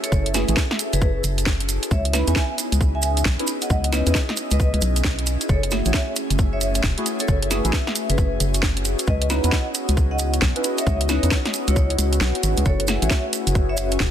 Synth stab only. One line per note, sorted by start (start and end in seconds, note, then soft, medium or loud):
0.34 0.46 A3 medium
0.34 0.46 E4 medium
0.34 0.46 F#4 medium
0.34 0.46 G#4 medium
0.49 0.57 A3 medium
0.49 0.57 E4 medium
0.49 0.57 F#4 medium
0.49 0.57 G#4 loud
2.13 2.25 C#4 medium
2.13 2.25 D#4 medium
2.13 2.25 E4 medium
2.13 2.25 B4 medium
2.28 2.36 C#4 medium
2.28 2.36 D#4 medium
2.28 2.36 E4 medium
2.28 2.36 B4 medium
3.40 3.48 C#4 medium
3.40 3.48 D#4 medium
3.40 3.48 E4 medium
3.40 3.48 B4 medium
3.93 4.05 C#4 medium
3.93 4.05 D#4 medium
3.93 4.05 E4 medium
3.93 4.05 B4 medium
4.07 4.15 C#4 medium
4.07 4.15 D#4 medium
4.07 4.15 E4 medium
4.07 4.15 B4 loud
5.72 5.84 A3 medium
5.72 5.84 E4 medium
5.72 5.84 F#4 medium
5.72 5.84 G#4 medium
5.86 5.95 A3 medium
5.86 5.95 E4 medium
5.86 5.95 F#4 medium
5.86 5.95 G#4 medium
6.98 7.06 A3 medium
6.98 7.07 E4 medium
6.98 7.07 F#4 medium
6.98 7.06 G#4 medium
7.51 7.63 A3 medium
7.51 7.63 E4 medium
7.51 7.63 F#4 medium
7.51 7.63 G#4 medium
7.65 7.74 A3 medium
7.65 7.74 E4 medium
7.65 7.74 F#4 medium
7.65 7.74 G#4 loud
9.30 9.42 C#4 medium
9.30 9.42 D#4 medium
9.30 9.42 E4 medium
9.30 9.42 B4 medium
9.44 9.53 C#4 medium
9.44 9.53 D#4 medium
9.44 9.53 E4 medium
9.44 9.53 B4 medium
10.56 10.65 C#4 medium
10.56 10.65 D#4 medium
10.56 10.65 E4 medium
10.56 10.65 B4 medium
11.09 11.21 C#4 medium
11.09 11.21 D#4 medium
11.09 11.21 E4 medium
11.09 11.21 B4 medium
11.23 11.32 C#4 medium
11.23 11.32 D#4 medium
11.23 11.32 E4 medium
11.23 11.32 B4 loud
12.88 13.00 A3 medium
12.88 13.00 E4 medium
12.88 13.00 F#4 medium
12.88 13.00 G#4 medium
13.02 13.11 A3 medium
13.02 13.11 E4 medium
13.02 13.11 F#4 medium
13.02 13.11 G#4 medium